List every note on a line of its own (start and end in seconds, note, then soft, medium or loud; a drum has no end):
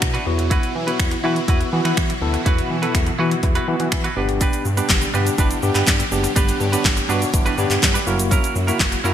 0.00 8.03 B2 medium
0.00 0.18 B2 loud
0.00 0.23 D3 medium
0.00 4.13 F#3 medium
0.00 0.17 B3 medium
0.00 0.17 D4 medium
0.00 0.23 D4 medium
0.00 4.13 E4 medium
0.00 0.18 F#4 medium
0.00 finger snap loud
0.00 muted clean electric guitar stroke soft
0.00 kick loud
0.00 closed hi-hat medium
0.14 0.26 D4 medium
0.14 0.25 F#4 medium
0.14 0.26 B4 medium
0.14 closed hi-hat medium
0.26 0.58 E2 loud
0.26 4.13 E3 medium
0.26 0.76 B3 loud
0.26 0.76 E4 medium
0.26 4.13 F#4 medium
0.26 0.77 F#4 loud
0.26 muted clean electric guitar stroke soft
0.38 muted clean electric guitar stroke soft
0.38 closed hi-hat medium
0.50 0.73 E4 medium
0.50 0.73 F#4 medium
0.50 0.74 B4 medium
0.50 kick loud
0.50 closed hi-hat medium
0.63 closed hi-hat medium
0.75 0.91 E3 loud
0.75 muted clean electric guitar stroke soft
0.87 1.17 B3 medium
0.87 1.17 E4 medium
0.87 0.98 E4 medium
0.87 1.17 F#4 loud
0.87 0.99 F#4 medium
0.87 0.99 B4 medium
0.87 closed hi-hat medium
0.99 1.16 E2 loud
0.99 finger snap loud
0.99 muted clean electric guitar stroke soft
0.99 kick loud
0.99 closed hi-hat medium
1.11 muted clean electric guitar stroke soft
1.11 closed hi-hat soft
1.24 1.40 E3 loud
1.24 1.44 B3 medium
1.24 1.42 E4 medium
1.24 1.44 E4 medium
1.24 1.44 F#4 loud
1.24 1.36 F#4 medium
1.24 1.35 B4 medium
1.36 muted clean electric guitar stroke soft
1.36 closed hi-hat medium
1.48 1.64 E2 loud
1.48 1.68 B3 medium
1.48 1.66 E4 medium
1.48 1.68 E4 medium
1.48 1.69 F#4 loud
1.48 1.61 F#4 medium
1.48 1.59 B4 medium
1.48 kick loud
1.48 closed hi-hat medium
1.61 muted clean electric guitar stroke medium
1.61 closed hi-hat soft
1.72 1.81 E3 loud
1.72 2.12 B3 medium
1.72 2.13 E4 medium
1.72 2.13 F#4 loud
1.72 muted clean electric guitar stroke soft
1.85 1.93 E3 medium
1.85 1.96 E4 medium
1.85 1.97 F#4 medium
1.85 1.97 B4 medium
1.85 finger snap medium
1.85 closed hi-hat soft
1.97 2.13 E3 loud
1.97 finger snap loud
1.97 muted clean electric guitar stroke soft
1.97 kick loud
1.97 closed hi-hat medium
2.09 muted clean electric guitar stroke soft
2.09 closed hi-hat medium
2.21 2.37 D2 medium
2.21 2.41 B3 medium
2.21 2.42 E4 medium
2.21 2.42 A4 loud
2.34 muted clean electric guitar stroke soft
2.34 closed hi-hat medium
2.46 2.62 E2 loud
2.46 2.76 B3 medium
2.46 2.68 E4 medium
2.46 2.76 E4 medium
2.46 2.76 F#4 loud
2.46 2.69 F#4 medium
2.46 2.69 B4 medium
2.46 kick loud
2.46 closed hi-hat medium
2.59 closed hi-hat medium
2.70 2.86 E3 medium
2.70 muted clean electric guitar stroke soft
2.82 3.12 B3 medium
2.82 3.12 E4 medium
2.82 2.93 E4 medium
2.82 2.94 F#4 medium
2.82 3.12 A4 medium
2.82 2.94 B4 medium
2.82 closed hi-hat medium
2.95 3.11 E2 loud
2.95 finger snap loud
2.95 muted clean electric guitar stroke soft
2.95 kick loud
2.95 closed hi-hat medium
3.07 muted clean electric guitar stroke soft
3.07 closed hi-hat soft
3.19 3.35 E3 loud
3.19 3.39 B3 medium
3.19 3.37 E4 medium
3.19 3.39 E4 medium
3.19 3.31 F#4 medium
3.19 3.39 F#4 loud
3.19 3.30 B4 medium
3.31 muted clean electric guitar stroke soft
3.31 closed hi-hat medium
3.43 3.59 E2 loud
3.43 3.63 B3 medium
3.43 3.64 E4 medium
3.43 3.64 F#4 medium
3.43 muted clean electric guitar stroke soft
3.43 kick loud
3.43 closed hi-hat medium
3.55 3.67 E4 medium
3.55 3.67 F#4 medium
3.55 3.68 B4 medium
3.55 closed hi-hat soft
3.68 3.76 E3 loud
3.68 4.08 B3 medium
3.68 4.08 E4 medium
3.68 4.08 F#4 medium
3.68 muted clean electric guitar stroke soft
3.80 3.88 E3 medium
3.80 muted clean electric guitar stroke soft
3.80 closed hi-hat soft
3.92 4.08 E3 loud
3.92 finger snap loud
3.92 muted clean electric guitar stroke soft
3.92 kick loud
3.92 closed hi-hat medium
4.04 4.16 E4 medium
4.04 4.17 F#4 medium
4.04 4.17 B4 medium
4.04 closed hi-hat medium
4.16 4.48 G1 loud
4.16 8.03 D3 medium
4.16 8.03 G3 medium
4.16 4.66 B3 medium
4.16 4.31 D4 medium
4.16 4.66 D4 medium
4.16 6.10 D4 medium
4.16 8.03 G4 medium
4.16 4.67 G4 loud
4.16 4.29 G4 medium
4.16 4.28 B4 medium
4.29 muted clean electric guitar stroke soft
4.29 closed hi-hat medium
4.41 4.63 D4 medium
4.41 4.64 G4 medium
4.41 4.64 B4 medium
4.41 kick loud
4.41 closed hi-hat medium
4.41 shaker medium
4.53 closed hi-hat medium
4.53 shaker medium
4.65 4.81 G2 medium
4.65 muted clean electric guitar stroke soft
4.65 shaker medium
4.77 5.07 B3 medium
4.77 5.08 D4 medium
4.77 4.88 D4 soft
4.77 5.08 G4 loud
4.77 4.89 G4 medium
4.77 4.90 B4 medium
4.77 closed hi-hat medium
4.77 shaker medium
4.89 5.06 G1 loud
4.89 muted clean electric guitar stroke soft
4.89 kick loud
4.89 snare loud
4.89 clap loud
4.89 closed hi-hat medium
4.89 shaker medium
5.02 muted clean electric guitar stroke soft
5.02 closed hi-hat soft
5.02 shaker soft
5.14 5.30 G2 loud
5.14 5.34 B3 medium
5.14 5.32 D4 medium
5.14 5.34 D4 medium
5.14 5.34 G4 loud
5.14 5.26 G4 medium
5.14 5.25 B4 medium
5.14 shaker medium
5.26 muted clean electric guitar stroke soft
5.26 closed hi-hat medium
5.26 shaker medium
5.38 5.54 G1 loud
5.38 5.58 B3 medium
5.38 5.56 D4 medium
5.38 5.58 D4 medium
5.38 5.59 E4 medium
5.38 5.50 G4 medium
5.38 5.49 B4 medium
5.38 kick loud
5.38 closed hi-hat medium
5.38 shaker medium
5.51 muted clean electric guitar stroke medium
5.51 closed hi-hat soft
5.51 shaker soft
5.63 5.71 G2 medium
5.63 6.03 B3 medium
5.63 6.03 D4 medium
5.63 6.03 G4 medium
5.63 muted clean electric guitar stroke soft
5.63 shaker medium
5.75 5.83 G2 medium
5.75 5.86 D4 medium
5.75 5.86 G4 medium
5.75 5.87 B4 medium
5.75 clap medium
5.75 closed hi-hat soft
5.75 shaker medium
5.87 6.03 G2 loud
5.87 muted clean electric guitar stroke soft
5.87 kick loud
5.87 snare medium
5.87 clap loud
5.87 closed hi-hat medium
5.87 shaker medium
5.99 muted clean electric guitar stroke soft
5.99 closed hi-hat medium
5.99 shaker medium
6.12 6.28 F#1 medium
6.12 6.32 B3 medium
6.12 6.32 D4 medium
6.12 6.32 G4 loud
6.12 8.05 C#5 medium
6.12 shaker medium
6.24 muted clean electric guitar stroke medium
6.24 closed hi-hat medium
6.24 shaker medium
6.36 6.52 G1 loud
6.36 6.66 B3 medium
6.36 6.58 D4 medium
6.36 6.66 D4 medium
6.36 6.66 G4 loud
6.36 6.59 G4 loud
6.36 6.59 B4 loud
6.36 kick loud
6.36 closed hi-hat medium
6.36 shaker medium
6.49 closed hi-hat medium
6.49 shaker medium
6.60 6.76 G2 loud
6.60 muted clean electric guitar stroke soft
6.60 shaker medium
6.72 7.03 B3 medium
6.72 7.03 D4 medium
6.72 6.83 D4 medium
6.72 7.03 G4 loud
6.72 6.84 G4 medium
6.72 6.85 B4 medium
6.72 closed hi-hat medium
6.72 shaker medium
6.85 7.01 G1 loud
6.85 muted clean electric guitar stroke soft
6.85 kick loud
6.85 snare loud
6.85 clap loud
6.85 closed hi-hat medium
6.85 shaker medium
6.97 muted clean electric guitar stroke soft
6.97 closed hi-hat soft
6.97 shaker soft
7.09 7.25 G2 loud
7.09 7.29 B3 medium
7.09 7.27 D4 medium
7.09 7.29 D4 medium
7.09 7.29 F#4 loud
7.09 7.21 G4 medium
7.09 7.20 B4 medium
7.09 shaker medium
7.21 muted clean electric guitar stroke medium
7.21 closed hi-hat medium
7.21 shaker medium
7.34 7.50 G1 loud
7.34 7.54 B3 medium
7.34 7.54 D4 medium
7.34 7.54 E4 loud
7.34 muted clean electric guitar stroke soft
7.34 kick loud
7.34 closed hi-hat medium
7.34 shaker medium
7.46 7.56 D4 medium
7.46 7.57 G4 medium
7.46 7.58 B4 medium
7.46 closed hi-hat soft
7.46 shaker soft
7.58 7.66 G2 medium
7.58 7.98 B3 medium
7.58 7.72 D4 medium
7.58 7.98 D4 medium
7.58 7.98 G4 medium
7.58 7.70 G4 medium
7.58 7.69 B4 medium
7.58 shaker medium
7.70 7.78 G2 loud
7.70 muted clean electric guitar stroke soft
7.70 clap medium
7.70 closed hi-hat soft
7.70 shaker medium
7.82 7.99 G2 loud
7.82 muted clean electric guitar stroke soft
7.82 kick loud
7.82 snare medium
7.82 clap loud
7.82 closed hi-hat medium
7.82 shaker medium
7.94 8.06 D4 medium
7.94 8.07 G4 medium
7.94 8.08 B4 medium
7.94 closed hi-hat medium
7.94 shaker medium
8.07 8.39 F#1 loud
8.07 9.14 C#3 medium
8.07 9.14 F#3 medium
8.07 8.57 A#3 loud
8.07 9.14 A#3 medium
8.07 8.21 C#4 medium
8.07 8.57 E4 medium
8.07 9.14 E4 medium
8.07 8.19 E4 medium
8.07 9.14 F#4 medium
8.07 8.57 F#4 loud
8.07 8.18 A#4 medium
8.07 shaker medium
8.19 muted clean electric guitar stroke medium
8.19 closed hi-hat medium
8.19 shaker medium
8.31 8.54 C#4 medium
8.31 8.54 E4 medium
8.31 8.54 A#4 medium
8.31 kick loud
8.31 closed hi-hat medium
8.31 shaker medium
8.44 closed hi-hat medium
8.44 shaker medium
8.55 8.72 F#2 medium
8.55 muted clean electric guitar stroke soft
8.55 shaker medium
8.67 8.98 A#3 medium
8.67 8.79 C#4 medium
8.67 8.98 E4 medium
8.67 8.79 E4 medium
8.67 8.98 F#4 loud
8.67 8.80 A#4 medium
8.67 closed hi-hat medium
8.67 shaker medium
8.80 8.96 F#1 loud
8.80 muted clean electric guitar stroke soft
8.80 kick loud
8.80 snare medium
8.80 clap loud
8.80 closed hi-hat medium
8.80 shaker medium
8.92 muted clean electric guitar stroke medium
8.92 closed hi-hat soft
8.92 shaker soft
9.04 9.14 F#2 loud
9.04 9.14 A#3 medium
9.04 9.14 C#4 medium
9.04 9.14 E4 medium
9.04 9.14 F#4 loud
9.04 9.14 A#4 loud
9.04 shaker medium